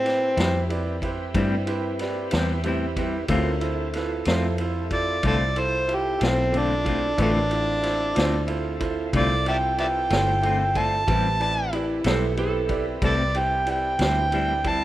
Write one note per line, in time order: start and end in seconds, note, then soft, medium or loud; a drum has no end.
0.00 0.34 A2 medium
0.00 0.68 C4 medium
0.00 3.26 C4 medium
0.00 3.26 E4 medium
0.00 3.26 G4 medium
0.00 3.26 B4 medium
0.04 0.29 E4 medium
0.04 0.29 G4 soft
0.04 0.29 B4 soft
0.04 0.29 C5 medium
0.04 snare soft
0.04 ride medium
0.37 1.32 F2 medium
0.37 0.58 G3 soft
0.37 0.58 C4 medium
0.37 0.61 E4 medium
0.37 0.57 E4 medium
0.37 0.61 G4 medium
0.37 0.62 B4 medium
0.37 0.62 C5 medium
0.37 snare loud
0.37 ride medium
0.69 0.94 E4 medium
0.69 0.94 G4 medium
0.69 0.94 B4 medium
0.69 0.95 D5 medium
0.69 ride medium
1.02 1.27 E4 medium
1.02 1.27 G4 medium
1.02 1.27 B4 medium
1.02 1.28 C5 medium
1.02 kick medium
1.02 ride medium
1.34 2.29 G2 medium
1.34 1.54 A2 medium
1.34 1.54 G3 medium
1.34 1.55 C4 medium
1.34 1.59 E4 medium
1.34 1.55 E4 medium
1.34 1.60 G4 medium
1.34 1.59 B4 medium
1.34 1.60 D5 medium
1.34 kick loud
1.34 ride medium
1.67 1.91 E4 medium
1.67 1.91 G4 medium
1.67 1.92 B4 medium
1.67 1.92 C5 medium
1.67 ride medium
1.99 2.24 E4 medium
1.99 2.24 G4 soft
1.99 2.24 B4 medium
1.99 2.24 D5 medium
1.99 snare soft
1.99 ride medium
2.31 3.27 E2 medium
2.31 2.53 C4 soft
2.31 2.56 E4 medium
2.31 2.52 E4 medium
2.31 2.56 G4 medium
2.31 2.56 B4 medium
2.31 2.56 C5 medium
2.31 snare loud
2.31 ride medium
2.35 2.53 G3 soft
2.63 2.84 A2 medium
2.63 2.85 G3 medium
2.63 2.85 C4 medium
2.63 2.88 E4 medium
2.63 2.89 G4 medium
2.63 2.89 B4 medium
2.63 2.89 C5 medium
2.63 ride medium
2.68 2.86 E4 medium
2.96 3.18 G3 soft
2.96 3.17 C4 soft
2.96 3.21 E4 medium
2.96 3.16 E4 medium
2.96 3.21 G4 medium
2.96 3.21 B4 medium
2.96 3.22 C5 medium
2.96 kick medium
2.96 ride medium
3.28 4.23 D2 medium
3.28 3.49 D3 medium
3.28 3.49 A3 medium
3.28 3.49 C4 medium
3.28 3.61 C#4 medium
3.28 3.53 E4 medium
3.28 3.60 F4 medium
3.28 3.53 F4 medium
3.28 3.50 F4 medium
3.28 3.61 F#4 medium
3.28 3.54 A4 medium
3.28 3.61 A#4 medium
3.28 3.54 C5 medium
3.28 kick loud
3.28 ride medium
3.60 7.14 C4 medium
3.60 7.14 E4 medium
3.60 3.86 E4 medium
3.60 3.86 F4 medium
3.60 7.14 F4 medium
3.60 7.14 A4 medium
3.60 3.86 A4 medium
3.60 3.86 C5 medium
3.60 ride medium
3.93 4.19 E4 medium
3.93 4.19 F4 medium
3.93 4.19 A4 medium
3.93 4.19 B4 medium
3.93 snare soft
3.93 ride medium
4.25 5.21 F2 medium
4.25 4.47 A3 soft
4.25 4.47 C4 medium
4.25 4.51 E4 medium
4.25 4.46 F4 medium
4.25 4.51 F4 medium
4.25 4.51 A4 medium
4.25 4.51 C5 medium
4.25 snare loud
4.25 ride medium
4.58 4.84 E4 medium
4.58 4.84 F4 medium
4.58 4.84 A4 medium
4.58 4.84 C5 medium
4.58 ride medium
4.90 5.16 E4 medium
4.90 5.16 F4 soft
4.90 5.16 A4 soft
4.90 5.16 C5 medium
4.90 5.24 D5 medium
4.90 kick medium
4.90 ride medium
5.23 6.18 C2 medium
5.23 5.43 D3 medium
5.23 5.44 A3 medium
5.23 5.44 C4 medium
5.23 5.48 E4 medium
5.23 5.47 F4 soft
5.23 5.44 F4 medium
5.23 5.48 A4 soft
5.23 5.48 C5 medium
5.23 kick loud
5.23 ride medium
5.27 5.35 A4 medium
5.27 5.61 D5 medium
5.56 5.80 E4 medium
5.56 5.80 F4 soft
5.56 5.81 A4 soft
5.56 5.81 C5 medium
5.56 ride medium
5.60 5.96 C5 medium
5.87 6.12 E4 soft
5.87 6.12 F4 soft
5.87 6.12 A4 soft
5.87 6.13 C5 medium
5.87 ride medium
5.95 6.27 G4 medium
6.18 7.16 B1 medium
6.18 6.41 C4 soft
6.18 6.44 E4 soft
6.18 6.44 F4 soft
6.18 6.41 F4 medium
6.18 6.44 A4 soft
6.18 6.44 C5 medium
6.18 ride medium
6.23 6.42 A3 soft
6.23 6.59 C4 medium
6.23 snare loud
6.51 6.72 D3 medium
6.51 6.73 A3 medium
6.51 6.76 E4 medium
6.51 6.76 F4 soft
6.51 6.77 A4 soft
6.51 6.77 C5 medium
6.51 ride medium
6.55 6.74 C4 medium
6.55 7.19 D4 medium
6.55 6.74 F4 medium
6.83 7.09 E4 medium
6.83 7.09 F4 soft
6.83 7.05 F4 medium
6.83 7.09 A4 soft
6.83 7.09 D5 medium
6.83 kick medium
6.83 ride medium
6.88 7.07 A3 soft
6.88 7.06 C4 soft
7.17 8.13 A1 medium
7.17 7.38 D3 medium
7.17 7.38 A3 medium
7.17 7.39 C4 medium
7.17 7.42 E4 medium
7.17 7.42 F4 medium
7.17 7.51 F4 medium
7.17 7.51 F#4 medium
7.17 7.42 A4 medium
7.17 7.51 A#4 medium
7.17 7.42 B4 medium
7.17 7.51 C#5 medium
7.17 kick loud
7.17 ride medium
7.21 7.30 A3 medium
7.21 8.46 D4 loud
7.21 7.39 F4 medium
7.50 11.04 C4 medium
7.50 7.75 E4 medium
7.50 11.05 E4 medium
7.50 7.75 F4 medium
7.50 11.05 F4 medium
7.50 7.75 A4 soft
7.50 11.04 A4 medium
7.50 7.75 D5 medium
7.50 ride medium
7.82 8.07 E4 medium
7.82 8.07 F4 soft
7.82 8.07 A4 soft
7.82 8.07 C5 medium
7.82 snare soft
7.82 ride medium
8.15 9.11 D2 medium
8.15 8.36 C4 medium
8.15 8.39 E4 medium
8.15 8.39 F4 medium
8.15 8.35 F4 medium
8.15 8.40 A4 medium
8.15 8.40 C5 medium
8.15 snare loud
8.15 ride medium
8.19 8.37 A3 soft
8.47 8.72 E4 medium
8.47 8.72 F4 medium
8.47 8.72 A4 medium
8.47 8.72 C5 medium
8.47 ride medium
8.80 9.04 E4 medium
8.80 9.05 F4 medium
8.80 9.05 A4 medium
8.80 9.05 C5 medium
8.80 kick medium
8.80 ride medium
9.13 10.07 C2 medium
9.13 9.33 D3 medium
9.13 9.33 A3 medium
9.13 9.34 C4 medium
9.13 9.37 E4 soft
9.13 9.38 F4 soft
9.13 9.34 F4 medium
9.13 9.38 A4 soft
9.13 9.38 D5 medium
9.13 kick loud
9.13 ride medium
9.17 9.47 D5 medium
9.46 9.70 E4 medium
9.46 9.70 F4 medium
9.46 9.70 A4 medium
9.46 9.70 C5 medium
9.46 9.56 D5 medium
9.46 9.57 E5 medium
9.46 9.78 G5 medium
9.46 ride medium
9.77 10.02 E4 medium
9.77 10.02 F4 soft
9.77 10.02 A4 soft
9.77 10.02 B4 medium
9.77 9.86 D5 medium
9.77 9.86 E5 medium
9.77 10.79 G5 loud
9.77 ride medium
10.09 11.05 G1 medium
10.09 10.31 C4 soft
10.09 10.34 E4 medium
10.09 10.34 F4 soft
10.09 10.30 F4 medium
10.09 10.34 A4 soft
10.09 10.35 C5 medium
10.09 snare loud
10.09 ride medium
10.14 10.31 A3 soft
10.42 10.62 D3 medium
10.42 10.63 A3 medium
10.42 10.63 C4 medium
10.42 10.67 E4 medium
10.42 10.67 F4 soft
10.42 10.67 A4 soft
10.42 10.67 C5 medium
10.42 ride medium
10.46 10.64 F4 medium
10.75 10.96 A3 soft
10.75 10.96 C4 medium
10.75 10.99 E4 medium
10.75 11.00 F4 soft
10.75 10.95 F4 medium
10.75 11.00 A4 medium
10.75 11.00 D5 medium
10.75 11.39 A5 medium
10.75 kick medium
10.75 ride medium
11.07 12.02 A1 medium
11.07 11.27 A2 medium
11.07 11.28 G3 medium
11.07 11.28 C4 medium
11.07 14.84 C4 medium
11.07 11.31 E4 medium
11.07 11.28 E4 medium
11.07 14.84 E4 medium
11.07 11.32 G4 medium
11.07 14.84 G4 medium
11.07 11.32 B4 medium
11.07 14.84 B4 medium
11.07 11.32 C5 medium
11.07 kick loud
11.07 ride medium
11.40 11.64 E4 medium
11.40 11.64 G4 soft
11.40 11.64 B4 medium
11.40 11.64 D5 medium
11.40 11.73 A5 medium
11.40 ride medium
11.73 11.97 E4 medium
11.73 12.04 E4 medium
11.73 11.97 G4 medium
11.73 11.97 B4 soft
11.73 11.98 D5 medium
11.73 ride medium
12.04 12.99 B1 medium
12.04 12.26 G3 soft
12.04 12.25 C4 medium
12.04 12.24 E4 medium
12.04 12.29 E4 medium
12.04 12.29 G4 medium
12.04 12.37 A4 medium
12.04 12.29 B4 medium
12.04 12.30 C5 medium
12.04 snare loud
12.04 ride medium
12.37 12.62 E4 medium
12.37 12.62 G4 medium
12.37 12.85 A4 medium
12.37 12.62 B4 medium
12.37 12.62 C5 medium
12.37 ride medium
12.69 12.94 E4 medium
12.69 12.94 G4 medium
12.69 12.94 B4 medium
12.69 12.94 D5 medium
12.69 kick medium
12.69 ride medium
13.02 13.97 C2 medium
13.02 13.22 A2 medium
13.02 13.22 G3 medium
13.02 13.23 C4 medium
13.02 13.27 E4 medium
13.02 13.23 E4 medium
13.02 13.27 G4 soft
13.02 13.14 A4 medium
13.02 13.27 B4 soft
13.02 13.27 D5 medium
13.02 13.39 D5 loud
13.02 kick loud
13.02 ride medium
13.34 13.59 E4 medium
13.34 13.59 G4 soft
13.34 13.59 B4 soft
13.34 13.59 C5 medium
13.34 13.68 G5 medium
13.34 ride medium
13.66 13.91 E4 medium
13.66 13.91 G4 soft
13.66 13.91 B4 soft
13.66 13.91 D5 medium
13.66 ride medium
13.70 14.70 G5 loud
13.99 14.84 D2 medium
13.99 14.20 C4 soft
13.99 14.24 E4 medium
13.99 14.19 E4 soft
13.99 14.24 G4 soft
13.99 14.24 B4 soft
13.99 14.24 C5 medium
13.99 snare loud
13.99 ride medium
14.03 14.21 G3 soft
14.32 14.52 A2 medium
14.32 14.52 G3 medium
14.32 14.53 C4 medium
14.32 14.57 E4 medium
14.32 14.53 E4 medium
14.32 14.57 G4 soft
14.32 14.57 B4 soft
14.32 14.57 D5 medium
14.32 ride medium
14.64 14.84 G3 soft
14.64 14.84 C4 medium
14.64 14.84 E4 medium
14.64 14.84 G4 soft
14.64 14.84 B4 soft
14.64 14.84 D5 medium
14.64 14.84 A5 medium
14.64 kick medium
14.64 ride medium